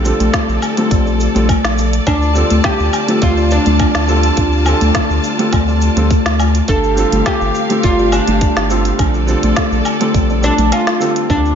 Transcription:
Already playing: sub bass A#1, string section A4 D5
0.03 felt piano D3 G3 C4 F4, shaker
0.07 felt piano A4
0.20 sub bass A#1, kalimba A3, closed hi-hat, shaker
0.33 kalimba F4, kick, snare, closed hi-hat, shaker
0.49 sub bass A#1, shaker
0.62 low woodblock, shaker
0.76 felt piano D3 G3 C4 F4 A4, kalimba A3, closed hi-hat, shaker
0.91 sub bass A#1, kalimba D5, kick, closed hi-hat, shaker
1.06 kalimba D5, shaker
1.20 shaker
1.34 sub bass A#1, felt piano D3 G3 C4 F4 A4, kalimba A3, closed hi-hat, shaker
1.49 kick, closed hi-hat, low woodblock, shaker
1.64 sub bass A#1, snare, shaker
1.78 shaker
1.93 closed hi-hat, shaker
2.06 sub bass D2, kalimba D4, oud D4, string section F4 A5, kick, closed hi-hat, low woodblock, shaker
2.22 shaker
2.33 felt piano D3 G3 C4 F4 A4, shaker
2.50 sub bass D2, kalimba A3, closed hi-hat, shaker
2.64 oud G4, kick, snare, closed hi-hat, shaker
2.80 sub bass D2, shaker
2.93 low woodblock, shaker
3.06 felt piano D3 G3 C4 F4 A4, kalimba A3, closed hi-hat, shaker
3.22 sub bass D2, oud F4, kalimba D5, kick, closed hi-hat, shaker
3.37 kalimba D5, shaker
3.51 oud D4, shaker
3.66 sub bass D2, kalimba A3, closed hi-hat, shaker
3.79 kick, closed hi-hat, low woodblock, shaker
3.95 sub bass D2, snare, shaker
4.08 felt piano D3 G3 C4 F4 A4, shaker
4.23 closed hi-hat, shaker
4.37 sub bass D2, kalimba D4, kick, closed hi-hat, shaker
4.52 shaker
4.64 felt piano D3 G3 C4 F4, low woodblock, shaker
4.69 felt piano A4
4.81 sub bass D2, kalimba A3, closed hi-hat, shaker
4.95 kalimba F4, kick, snare, closed hi-hat, shaker
5.10 sub bass D2, shaker
5.24 shaker
5.38 felt piano D3 G3 C4 F4 A4, kalimba A3, closed hi-hat, shaker
5.53 sub bass D2, kalimba D5, kick, closed hi-hat, low woodblock, shaker
5.68 kalimba D5, shaker
5.81 shaker
5.96 sub bass D2, felt piano D3 G3 C4 F4 A4, kalimba A3, closed hi-hat, shaker
6.11 kick, closed hi-hat, shaker
6.26 sub bass D2, snare, shaker
6.40 low woodblock, shaker
6.55 closed hi-hat, shaker
6.68 sub bass G1, kalimba D4, string section G4 F5, oud A4, kick, closed hi-hat, shaker
6.84 shaker
6.95 felt piano D3 G3 C4 F4, shaker
6.99 felt piano A4
7.12 sub bass G1, kalimba A3, closed hi-hat, shaker
7.26 kalimba F4, oud G4, kick, snare, closed hi-hat, low woodblock, shaker
7.41 sub bass G1, shaker
7.55 shaker
7.68 felt piano D3 G3 C4 F4, kalimba A3, closed hi-hat, shaker
7.72 felt piano A4
7.83 sub bass G1, oud F4, kalimba D5, kick, closed hi-hat, shaker
7.99 kalimba D5, shaker
8.12 oud D4, low woodblock, shaker
8.28 sub bass G1, kalimba A3, closed hi-hat, shaker
8.41 kick, closed hi-hat, shaker
8.57 sub bass G1, snare, shaker
8.69 felt piano D3 G3 C4 F4 A4, shaker
8.85 closed hi-hat, shaker
8.99 sub bass A#1, kalimba D4, string section A4 D5, kick, closed hi-hat, low woodblock, shaker
9.14 shaker
9.26 felt piano D3 G3 C4 F4 A4, shaker
9.43 sub bass A#1, kalimba A3, closed hi-hat, shaker
9.56 kalimba F4, kick, snare, closed hi-hat, shaker
9.72 sub bass A#1, shaker
9.85 low woodblock, shaker
10.00 felt piano D3 G3 C4 F4 A4, kalimba A3, closed hi-hat, shaker
10.14 sub bass A#1, kalimba D5, kick, closed hi-hat, shaker
10.30 kalimba D5, shaker
10.42 felt piano D3 G3 C4 F4 A4, oud D4, shaker
10.58 sub bass A#1, kalimba A3, closed hi-hat, shaker
10.72 oud F4, closed hi-hat, low woodblock, shaker
10.87 snare, shaker
11.00 felt piano D3 G3 C4 F4 A4, shaker
11.16 closed hi-hat, shaker
11.30 sub bass D2, kalimba D4, oud D4, kick, shaker
11.45 shaker

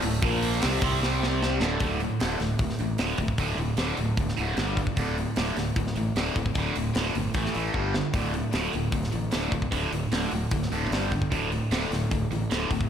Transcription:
Already playing: tonewheel organ D4 A4 E5
0.02 fingered electric bass D1, distorted electric guitar D2 A2, open hi-hat
0.22 fingered electric bass A#1, distorted electric guitar A#2 F3 A#3, tonewheel organ A#3 F4 C5, kick, open hi-hat
0.42 open hi-hat
0.61 fingered electric bass C2, distorted electric guitar C3 G3 C4, tonewheel organ D4 A4 E5, snare, open hi-hat
0.80 fingered electric bass C2, distorted electric guitar C3 G3 C4, tonewheel organ C4 G4 D5, kick, open hi-hat
1.03 snare
1.23 snare
1.43 snare
1.60 fingered electric bass D1, distorted electric guitar D2 A2 D3, tonewheel organ D4 A4 E5, snare
1.80 fingered electric bass D1, distorted electric guitar D2 A2 D3, kick, open hi-hat
2.00 distorted electric guitar D2 A2, open hi-hat
2.20 fingered electric bass D1, distorted electric guitar D2 A2 D3, snare, open hi-hat
2.40 fingered electric bass D1, distorted electric guitar D2 A2, snare, open hi-hat
2.59 fingered electric bass D1, distorted electric guitar D2 A2, kick, open hi-hat
2.70 snare
2.78 fingered electric bass A1, distorted electric guitar D2 A2, open hi-hat
2.98 fingered electric bass D1, distorted electric guitar D2 A2 D3, snare, open hi-hat
3.18 fingered electric bass D1, distorted electric guitar D2 A2, kick, open hi-hat
3.28 kick
3.38 fingered electric bass D1, distorted electric guitar D2 A2 D3, kick, open hi-hat
3.57 fingered electric bass D1, distorted electric guitar D2 A2, open hi-hat
3.77 fingered electric bass D1, distorted electric guitar D2 A2 D3, snare, open hi-hat
3.97 fingered electric bass D1, distorted electric guitar D2 A2, open hi-hat
4.17 fingered electric bass D1, distorted electric guitar D2 A2, kick, open hi-hat
4.29 snare
4.37 fingered electric bass D1, distorted electric guitar D2 A2 D3, open hi-hat
4.57 fingered electric bass G1, distorted electric guitar G2, snare, open hi-hat
4.61 distorted electric guitar D3 G3
4.77 overdriven electric guitar G2 D3, kick, open hi-hat
4.81 distorted electric guitar G2 D3
4.87 kick
4.97 fingered electric bass D1, distorted electric guitar D2 A2 D3, kick, open hi-hat
5.18 distorted electric guitar D2 A2, open hi-hat
5.36 fingered electric bass D1, distorted electric guitar D2 A2 D3, snare, open hi-hat
5.57 fingered electric bass D1, distorted electric guitar D2 A2, snare, open hi-hat
5.76 fingered electric bass D1, distorted electric guitar D2 A2, kick, open hi-hat
5.87 snare
5.96 fingered electric bass A1, distorted electric guitar D2 A2, open hi-hat
6.15 fingered electric bass D1, distorted electric guitar D2 A2 D3, snare, open hi-hat
6.36 fingered electric bass D1, distorted electric guitar D2 A2, kick, open hi-hat
6.46 kick
6.54 fingered electric bass D1, distorted electric guitar D2 A2 D3, kick, open hi-hat
6.75 fingered electric bass D1, distorted electric guitar D2 A2, open hi-hat
6.94 fingered electric bass D1, distorted electric guitar D2 A2 D3, snare, open hi-hat
7.15 fingered electric bass G1, distorted electric guitar D2 A2, open hi-hat
7.34 fingered electric bass A1, distorted electric guitar A2 E3 A3, kick, open hi-hat
7.46 snare
7.54 fingered electric bass A1, distorted electric guitar A2 E3 A3, open hi-hat
7.73 fingered electric bass G1, distorted electric guitar G2 D3 G3, kick
7.93 distorted electric guitar G2 D3, snare
8.14 fingered electric bass D1, distorted electric guitar D2 A2 D3, kick, open hi-hat
8.33 distorted electric guitar D2 A2, open hi-hat
8.51 fingered electric bass D1, distorted electric guitar D2 A2 D3, snare, open hi-hat
8.73 fingered electric bass D1, distorted electric guitar D2 A2, open hi-hat
8.92 fingered electric bass D1, distorted electric guitar D2 A2, kick, open hi-hat
9.04 snare
9.11 fingered electric bass A1, distorted electric guitar D2 A2, open hi-hat
9.31 fingered electric bass D1, distorted electric guitar D2 A2 D3, snare, open hi-hat
9.52 fingered electric bass D1, distorted electric guitar D2 A2, kick, open hi-hat
9.62 kick
9.71 fingered electric bass D1, distorted electric guitar D2 A2 D3, kick, open hi-hat
9.92 fingered electric bass D1, distorted electric guitar D2 A2, open hi-hat
10.12 fingered electric bass D1, distorted electric guitar D2 A2 D3, snare, open hi-hat
10.31 fingered electric bass D1, distorted electric guitar D2 A2, open hi-hat
10.51 fingered electric bass D1, distorted electric guitar D2 A2, kick, open hi-hat
10.62 snare
10.71 fingered electric bass D1, distorted electric guitar D2 A2 D3, open hi-hat
10.91 fingered electric bass G1, distorted electric guitar G2 D3 G3, snare, open hi-hat
11.12 distorted electric guitar G2 D3, kick, open hi-hat
11.22 kick
11.31 fingered electric bass D1, distorted electric guitar D2 A2 D3, kick, open hi-hat
11.51 distorted electric guitar D2 A2, open hi-hat
11.71 fingered electric bass D1, distorted electric guitar D2 A2 D3, snare, open hi-hat
11.91 fingered electric bass D1, distorted electric guitar D2 A2, snare, open hi-hat
12.11 fingered electric bass D1, distorted electric guitar D2 A2, kick, open hi-hat
12.31 fingered electric bass A1, distorted electric guitar D2 A2, open hi-hat
12.51 fingered electric bass D1, distorted electric guitar D2 A2 D3, snare, open hi-hat
12.71 fingered electric bass D1, distorted electric guitar D2 A2, kick, open hi-hat
12.81 kick

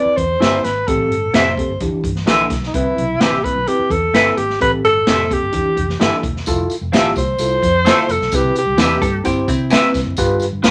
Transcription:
Already playing: tine electric piano C4 E4 B4, alto saxophone D5
0.05 muted fingered electric bass stroke
0.17 fingered electric bass E2, alto saxophone C5, kick, closed hi-hat
0.40 fingered electric bass G1, tine electric piano C4 E4 D5, clean electric guitar E4 G4 B4 E5, snare, closed hi-hat
0.64 fingered electric bass G#1, alto saxophone B4, snare, closed hi-hat
0.88 fingered electric bass A1, tine electric piano A2 C4 G4 A4, alto saxophone A4, kick, closed hi-hat
1.10 fingered electric bass G1, closed hi-hat
1.33 fingered electric bass F1, tine electric piano C4 G4 A4, clean electric guitar E4 G4 C5 E5, alto saxophone C5, snare, closed hi-hat
1.57 tine electric piano C4 G4 A4, kick, closed hi-hat
1.68 fingered electric bass G1
1.80 fingered electric bass E1, tine electric piano E3 D4 E4 G4, kick, closed hi-hat
1.92 muted fingered electric bass stroke
2.04 fingered electric bass G1, kick, closed hi-hat
2.16 snare
2.26 fingered electric bass A#1, tine electric piano D4 E4 A4, clean electric guitar D4 G4 B4 E5, snare, closed hi-hat
2.50 fingered electric bass B1, kick, snare, closed hi-hat
2.63 alto saxophone D#4, snare
2.74 fingered electric bass C2, tine electric piano C3 C4 E4 B4, alto saxophone E4, kick, closed hi-hat
2.97 fingered electric bass B1, closed hi-hat
3.20 fingered electric bass A1, clean electric guitar C4 G4 B4 E5, tine electric piano C4 E4 B4, alto saxophone G4, snare, closed hi-hat
3.44 tine electric piano C4 E4 B4, alto saxophone B4, kick, closed hi-hat
3.55 fingered electric bass B1
3.67 tine electric piano C4 E4 B4, alto saxophone G4, closed hi-hat
3.79 muted fingered electric bass stroke
3.90 fingered electric bass E2, alto saxophone A4, kick, closed hi-hat
4.13 fingered electric bass G1, tine electric piano C4 E4 B4, clean electric guitar C4 G4 B4 E5, snare, closed hi-hat
4.37 fingered electric bass G#1, alto saxophone G4, closed hi-hat
4.50 snare
4.60 fingered electric bass A1, tine electric piano A2 C4 G4 A4, alto saxophone B4, kick, closed hi-hat
4.83 fingered electric bass G1, alto saxophone A4, closed hi-hat
5.07 fingered electric bass F1, tine electric piano C4 G4 A4, clean electric guitar E4 G4 C5 E5, snare, closed hi-hat
5.30 tine electric piano C4 G4 A4, alto saxophone G4, kick, closed hi-hat
5.42 fingered electric bass G1
5.52 fingered electric bass E1, tine electric piano E3 D4 E4 G4, kick, closed hi-hat
5.76 fingered electric bass F1, kick, closed hi-hat
5.89 snare
5.99 fingered electric bass G1, tine electric piano D4 E4 A4, clean electric guitar D4 G4 B4 E5, snare, closed hi-hat
6.23 fingered electric bass E1, kick, closed hi-hat
6.36 snare
6.46 fingered electric bass F1, tine electric piano E4 F4 A4, kick, closed hi-hat, tambourine
6.70 closed hi-hat, tambourine
6.81 fingered electric bass F1
6.92 fingered electric bass A1, clean electric guitar C4 F4 A4 E5, tine electric piano E4 F4 G4, snare, closed hi-hat, tambourine
7.16 fingered electric bass C2, alto saxophone C5, kick, closed hi-hat, tambourine
7.39 fingered electric bass C2, tine electric piano E4 F4 A4, closed hi-hat, tambourine
7.62 fingered electric bass F2, kick, closed hi-hat, tambourine
7.85 clean electric guitar C4 F4 A4 E5, tine electric piano E4 F4 A4, snare, closed hi-hat, tambourine
8.09 fingered electric bass F1, alto saxophone A4, closed hi-hat, tambourine
8.20 fingered electric bass B1, snare
8.32 fingered electric bass C2, tine electric piano C3 C4 E4 B4, alto saxophone G4, kick, closed hi-hat, tambourine
8.56 alto saxophone G4, closed hi-hat, tambourine
8.66 fingered electric bass C2
8.78 fingered electric bass E2, tine electric piano C4 E4 B4, clean electric guitar E4 G4 B4 E5, snare, closed hi-hat, tambourine
9.01 fingered electric bass G2, hollow-body jazz guitar A4, kick, closed hi-hat, tambourine
9.24 fingered electric bass G1, tine electric piano C4 E4 C5, hollow-body jazz guitar E4 G4, kick, closed hi-hat, tambourine
9.47 fingered electric bass C3, hollow-body jazz guitar C4 E4, kick, closed hi-hat, tambourine
9.70 tine electric piano C4 E4 B4, clean electric guitar E4 G4 B4 E5, snare, closed hi-hat, tambourine
9.94 fingered electric bass C2, kick, snare, closed hi-hat, tambourine
10.05 fingered electric bass F#1
10.17 fingered electric bass G1, tine electric piano G2 F4 G4 B4, kick, closed hi-hat, tambourine
10.40 closed hi-hat, tambourine
10.51 fingered electric bass G1
10.63 fingered electric bass B1, clean electric guitar D4 G4 B4 F5, tine electric piano F4 G4 A4, snare, closed hi-hat, tambourine

